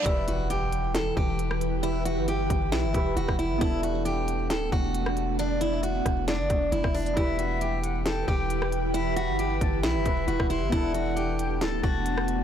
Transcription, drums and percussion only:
0.06 kick, closed hi-hat
0.28 closed hi-hat
0.50 closed hi-hat
0.73 closed hi-hat
0.95 snare, closed hi-hat
1.17 kick
1.39 closed hi-hat
1.51 cross-stick
1.61 closed hi-hat
1.83 closed hi-hat
2.06 closed hi-hat
2.28 closed hi-hat
2.50 kick, closed hi-hat
2.72 snare, closed hi-hat
2.94 kick, closed hi-hat
3.17 closed hi-hat
3.29 kick, cross-stick
3.39 closed hi-hat
3.61 kick, closed hi-hat
3.83 closed hi-hat
4.06 closed hi-hat
4.28 closed hi-hat
4.50 snare, closed hi-hat
4.72 kick
4.95 closed hi-hat
5.06 cross-stick
5.17 closed hi-hat
5.39 closed hi-hat
5.61 closed hi-hat
5.83 closed hi-hat
6.06 kick, cross-stick, closed hi-hat
6.28 snare, closed hi-hat
6.50 kick, closed hi-hat
6.72 closed hi-hat
6.84 kick, cross-stick
6.95 closed hi-hat, open hi-hat
7.06 closed hi-hat
7.17 kick, closed hi-hat
7.39 closed hi-hat
7.61 closed hi-hat
7.84 closed hi-hat
8.06 snare, closed hi-hat
8.28 kick
8.50 closed hi-hat
8.62 cross-stick
8.72 closed hi-hat
8.95 closed hi-hat
9.17 closed hi-hat
9.39 closed hi-hat
9.61 kick, closed hi-hat
9.83 snare, closed hi-hat
10.06 kick, closed hi-hat
10.28 closed hi-hat
10.40 kick, cross-stick
10.50 closed hi-hat
10.72 kick, closed hi-hat
10.94 closed hi-hat
11.17 closed hi-hat
11.39 closed hi-hat
11.61 snare, closed hi-hat
11.83 kick
12.06 closed hi-hat
12.18 cross-stick
12.28 closed hi-hat

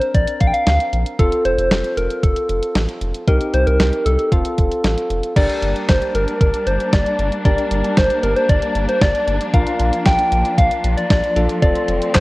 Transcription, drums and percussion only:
0.02 closed hi-hat
0.15 kick, closed hi-hat
0.28 closed hi-hat
0.41 kick, closed hi-hat
0.54 closed hi-hat
0.67 snare, closed hi-hat
0.80 closed hi-hat
0.93 closed hi-hat
1.06 closed hi-hat
1.19 kick, closed hi-hat
1.32 closed hi-hat
1.45 closed hi-hat
1.58 closed hi-hat
1.71 snare, closed hi-hat
1.84 closed hi-hat
1.97 closed hi-hat
2.10 closed hi-hat
2.23 kick, closed hi-hat
2.36 closed hi-hat
2.49 closed hi-hat
2.63 closed hi-hat
2.75 snare, closed hi-hat
2.89 closed hi-hat
3.02 closed hi-hat
3.15 closed hi-hat
3.28 kick, closed hi-hat
3.41 closed hi-hat
3.54 closed hi-hat
3.67 closed hi-hat
3.80 snare, closed hi-hat
3.93 closed hi-hat
4.06 closed hi-hat
4.19 closed hi-hat
4.32 kick, closed hi-hat
4.45 closed hi-hat
4.58 kick, closed hi-hat
4.71 closed hi-hat
4.84 snare, closed hi-hat
4.98 closed hi-hat
5.10 closed hi-hat
5.23 closed hi-hat
5.36 kick, closed hi-hat, crash
5.50 closed hi-hat
5.62 closed hi-hat
5.76 closed hi-hat
5.88 kick, snare, closed hi-hat
6.02 closed hi-hat
6.15 closed hi-hat
6.28 closed hi-hat
6.41 kick, closed hi-hat
6.54 closed hi-hat
6.67 closed hi-hat
6.80 closed hi-hat
6.93 kick, snare, closed hi-hat
7.06 closed hi-hat
7.19 closed hi-hat
7.32 closed hi-hat
7.45 kick, closed hi-hat
7.58 closed hi-hat
7.71 closed hi-hat
7.84 closed hi-hat
7.97 kick, snare, closed hi-hat
8.10 closed hi-hat
8.23 closed hi-hat
8.36 closed hi-hat
8.49 kick, closed hi-hat
8.62 closed hi-hat
8.75 closed hi-hat
8.89 closed hi-hat
9.01 kick, snare, closed hi-hat
9.15 closed hi-hat
9.28 closed hi-hat
9.41 closed hi-hat
9.54 kick, closed hi-hat
9.67 closed hi-hat
9.80 closed hi-hat
9.93 closed hi-hat
10.06 kick, snare, closed hi-hat
10.19 closed hi-hat
10.32 closed hi-hat
10.45 closed hi-hat
10.58 kick, closed hi-hat
10.71 closed hi-hat
10.84 closed hi-hat
10.98 closed hi-hat
11.10 kick, snare, closed hi-hat
11.24 closed hi-hat
11.36 closed hi-hat
11.49 closed hi-hat
11.62 kick, closed hi-hat
11.76 closed hi-hat
11.88 closed hi-hat
12.02 closed hi-hat
12.15 kick, snare, clap, closed hi-hat

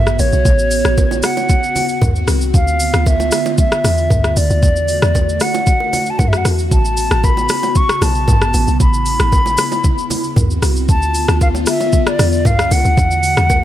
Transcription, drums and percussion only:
0.07 cross-stick, shaker
0.19 open hi-hat, high bongo, shaker
0.33 shaker
0.45 kick, low conga, shaker
0.59 shaker
0.71 open hi-hat, shaker
0.85 cross-stick, shaker
0.98 kick, high bongo, shaker
1.11 low bongo, shaker
1.23 cross-stick, open hi-hat, low bongo, shaker
1.37 low bongo, shaker
1.49 kick, low conga, shaker
1.63 shaker
1.76 open hi-hat, low bongo, low conga, shaker
1.89 shaker
2.01 kick, mid tom, high bongo, shaker
2.16 shaker
2.28 cross-stick, open hi-hat, high bongo, shaker
2.41 shaker
2.54 kick, low conga, shaker
2.68 shaker
2.80 open hi-hat, shaker
2.94 cross-stick, shaker
3.06 kick, high bongo, shaker
3.20 low bongo, shaker
3.31 cross-stick, open hi-hat, low bongo, shaker
3.46 low bongo, shaker
3.58 kick, low conga, shaker
3.72 cross-stick, shaker
3.84 cross-stick, open hi-hat, low bongo, low conga, shaker
3.97 shaker
4.10 kick, mid tom, high bongo, shaker
4.24 cross-stick, shaker
4.37 open hi-hat, high bongo, shaker
4.50 shaker
4.63 kick, low conga, shaker
4.76 shaker
4.88 open hi-hat, shaker
5.02 cross-stick, shaker
5.15 kick, high bongo, shaker
5.29 shaker
5.40 cross-stick, open hi-hat, low bongo, shaker
5.54 low bongo, shaker
5.67 kick, low conga, shaker
5.80 high bongo
5.93 open hi-hat, low bongo, low conga, shaker
6.06 shaker
6.19 kick, mid tom, high bongo, shaker
6.33 cross-stick, shaker
6.45 cross-stick, open hi-hat, high bongo, shaker
6.59 shaker
6.71 kick, low conga, shaker
6.85 shaker
6.97 open hi-hat, shaker
7.11 cross-stick, shaker
7.24 kick, high bongo, shaker
7.37 low bongo, shaker
7.49 cross-stick, open hi-hat, low bongo, shaker
7.63 low bongo, shaker
7.75 kick, low conga, shaker
7.89 cross-stick, shaker
8.02 cross-stick, open hi-hat, low bongo, low conga, shaker
8.15 shaker
8.28 kick, mid tom, high bongo, shaker
8.42 cross-stick, shaker
8.54 open hi-hat, high bongo, shaker
8.67 shaker
8.80 kick, low conga, shaker
8.94 shaker
9.06 open hi-hat, shaker
9.20 cross-stick, shaker
9.32 kick, high bongo, shaker
9.46 low bongo, shaker
9.58 cross-stick, open hi-hat, low bongo, shaker
9.72 low bongo, shaker
9.84 kick, low conga, shaker
9.98 shaker
10.10 open hi-hat, low bongo, low conga, shaker
10.24 shaker
10.36 kick, mid tom, high bongo, shaker
10.51 shaker
10.62 cross-stick, open hi-hat, high bongo, shaker
10.76 shaker
10.89 kick, low conga, shaker
11.02 shaker
11.14 open hi-hat, shaker
11.28 cross-stick, shaker
11.41 kick, high bongo, shaker
11.55 low bongo, shaker
11.66 cross-stick, open hi-hat, low bongo, shaker
11.80 low bongo, shaker
11.93 kick, low conga, shaker
12.07 cross-stick, shaker
12.19 cross-stick, open hi-hat, low bongo, low conga, shaker
12.32 shaker
12.45 kick, mid tom, high bongo, shaker
12.59 cross-stick, shaker
12.71 open hi-hat, high bongo, shaker
12.85 shaker
12.98 kick, low conga, shaker
13.11 shaker
13.23 open hi-hat, shaker
13.37 cross-stick, shaker
13.50 kick, high bongo, shaker

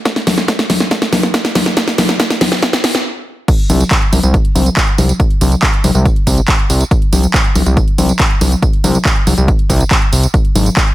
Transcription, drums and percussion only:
0.05 kick, snare, closed hi-hat
0.16 snare, closed hi-hat
0.27 snare, open hi-hat, high conga
0.38 snare, closed hi-hat
0.48 kick, snare, closed hi-hat
0.59 snare, closed hi-hat
0.70 snare, open hi-hat, high conga
0.80 snare, closed hi-hat
0.91 kick, snare, closed hi-hat
1.02 snare, closed hi-hat
1.13 snare, open hi-hat, high conga
1.23 snare
1.34 kick, snare, closed hi-hat
1.45 snare, closed hi-hat
1.55 snare, open hi-hat, high conga
1.66 snare, closed hi-hat
1.77 kick, snare, closed hi-hat
1.88 snare, closed hi-hat
1.98 snare, open hi-hat, high conga
2.09 snare, closed hi-hat
2.20 kick, snare, closed hi-hat
2.30 snare, closed hi-hat
2.41 snare, open hi-hat, high conga
2.52 snare, open hi-hat
2.62 kick, snare, closed hi-hat
2.73 snare, closed hi-hat
2.84 kick, snare, open hi-hat
2.95 snare, closed hi-hat
3.48 kick, closed hi-hat, crash, tambourine
3.59 closed hi-hat
3.70 open hi-hat, tambourine, high conga
3.80 closed hi-hat, tambourine
3.91 kick, clap, closed hi-hat, tambourine
4.02 closed hi-hat
4.13 open hi-hat, tambourine, high conga
4.23 closed hi-hat, tambourine
4.34 kick, closed hi-hat, tambourine
4.45 closed hi-hat
4.56 open hi-hat, tambourine, high conga
4.66 closed hi-hat, tambourine
4.77 kick, clap, closed hi-hat, tambourine
4.88 closed hi-hat
4.98 open hi-hat, tambourine, high conga
5.09 closed hi-hat, tambourine
5.20 kick, closed hi-hat, tambourine
5.30 closed hi-hat
5.41 open hi-hat, tambourine, high conga
5.52 closed hi-hat, tambourine
5.63 kick, clap, closed hi-hat, tambourine
5.73 closed hi-hat
5.84 open hi-hat, tambourine, high conga
5.95 closed hi-hat, tambourine
6.05 kick, closed hi-hat, tambourine
6.16 closed hi-hat
6.27 kick, open hi-hat, tambourine
6.38 closed hi-hat, tambourine
6.48 kick, clap, closed hi-hat, tambourine
6.59 closed hi-hat
6.70 open hi-hat, tambourine
6.81 closed hi-hat, tambourine
6.91 kick, closed hi-hat, tambourine
7.02 closed hi-hat
7.13 open hi-hat, tambourine, high conga
7.23 closed hi-hat, tambourine
7.34 kick, clap, closed hi-hat, tambourine
7.45 closed hi-hat
7.55 open hi-hat, tambourine, high conga
7.66 closed hi-hat, tambourine
7.77 kick, closed hi-hat, tambourine
7.88 closed hi-hat
7.98 open hi-hat, tambourine, high conga
8.09 closed hi-hat, tambourine
8.20 kick, clap, closed hi-hat, tambourine
8.30 closed hi-hat
8.41 open hi-hat, tambourine, high conga
8.52 closed hi-hat, tambourine
8.62 kick, closed hi-hat, tambourine
8.73 closed hi-hat
8.84 open hi-hat, tambourine, high conga
8.95 closed hi-hat, tambourine
9.05 kick, clap, closed hi-hat, tambourine
9.16 closed hi-hat
9.27 open hi-hat, tambourine, high conga
9.38 closed hi-hat, tambourine
9.48 kick, closed hi-hat, tambourine
9.59 closed hi-hat
9.70 kick, open hi-hat, tambourine
9.80 closed hi-hat, tambourine
9.91 kick, clap, closed hi-hat, tambourine
10.02 closed hi-hat
10.13 open hi-hat, tambourine
10.23 closed hi-hat, tambourine
10.34 kick, closed hi-hat, tambourine
10.45 closed hi-hat
10.55 open hi-hat, tambourine, high conga
10.66 tambourine
10.77 kick, clap, closed hi-hat, tambourine
10.88 closed hi-hat

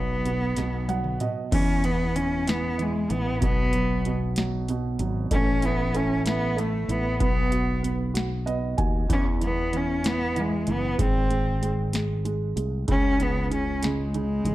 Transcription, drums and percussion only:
0.26 closed hi-hat
0.57 snare, closed hi-hat
0.89 closed hi-hat, high tom
1.04 mid tom
1.20 closed hi-hat, mid tom
1.52 kick, closed hi-hat, crash
1.84 closed hi-hat
2.16 closed hi-hat
2.47 snare, closed hi-hat
2.79 closed hi-hat
3.10 closed hi-hat
3.42 kick, closed hi-hat
3.73 closed hi-hat
4.05 closed hi-hat
4.36 snare, closed hi-hat
4.68 closed hi-hat
4.99 closed hi-hat
5.31 kick, closed hi-hat
5.62 closed hi-hat
5.95 closed hi-hat
6.26 snare, closed hi-hat
6.58 closed hi-hat
6.89 closed hi-hat
7.20 kick, closed hi-hat
7.52 closed hi-hat
7.84 closed hi-hat
8.15 snare, closed hi-hat
8.47 closed hi-hat
8.78 kick, closed hi-hat
9.10 kick, closed hi-hat
9.41 closed hi-hat
9.73 closed hi-hat
10.04 snare, closed hi-hat
10.36 closed hi-hat
10.67 closed hi-hat
10.99 kick, closed hi-hat
11.31 closed hi-hat
11.63 closed hi-hat
11.93 snare, closed hi-hat
12.25 closed hi-hat
12.57 closed hi-hat
12.88 kick, closed hi-hat
13.20 closed hi-hat
13.52 closed hi-hat
13.83 snare, closed hi-hat
14.14 closed hi-hat
14.45 closed hi-hat

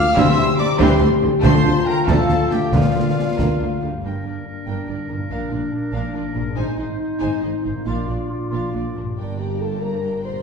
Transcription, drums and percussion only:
0.17 concert bass drum, snare
0.58 snare
0.80 concert bass drum, snare
1.43 concert bass drum, snare, crash
2.08 concert bass drum, snare
2.29 snare
2.51 snare
2.72 concert bass drum, snare
3.39 concert bass drum, snare

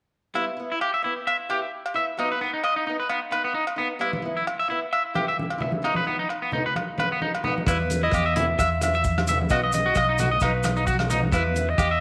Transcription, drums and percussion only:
0.35 low agogo
0.81 low agogo
1.27 low agogo
1.50 low agogo
1.86 low agogo
2.19 low agogo
2.64 low agogo
3.09 low agogo
3.32 low agogo
3.67 low agogo
4.01 low agogo
4.13 high conga
4.47 low agogo
4.93 low agogo
5.15 high conga, low agogo
5.39 high conga
5.50 low agogo
5.60 low conga
5.72 high conga
5.85 low agogo
5.95 high conga
6.30 low agogo
6.52 low conga
6.76 high conga, low agogo
6.98 high conga, low agogo
7.22 high conga
7.35 low agogo
7.44 low conga
7.58 high conga
7.67 kick, cross-stick, low agogo, maracas
7.90 closed hi-hat, high conga, maracas
8.12 kick, cross-stick, low agogo, maracas
8.36 closed hi-hat, high conga, low conga
8.59 kick, cross-stick, low agogo, maracas
8.81 cross-stick, closed hi-hat, high conga, low agogo, maracas
8.94 maracas
9.04 kick, maracas
9.18 cross-stick, high conga, low agogo
9.27 closed hi-hat, low conga, maracas
9.41 high conga
9.49 kick, cross-stick, low agogo, maracas
9.72 closed hi-hat, high conga, maracas
9.95 kick, cross-stick, low agogo, maracas
10.18 closed hi-hat, high conga, low conga, maracas
10.40 kick, cross-stick, low agogo, maracas
10.63 cross-stick, closed hi-hat, high conga, low agogo, maracas
10.76 maracas
10.87 kick, maracas
10.99 cross-stick, high conga, low agogo
11.10 closed hi-hat, low conga, maracas
11.24 high conga
11.32 kick, cross-stick, low agogo, maracas
11.56 closed hi-hat, high conga, maracas
11.78 kick, cross-stick, low agogo, maracas

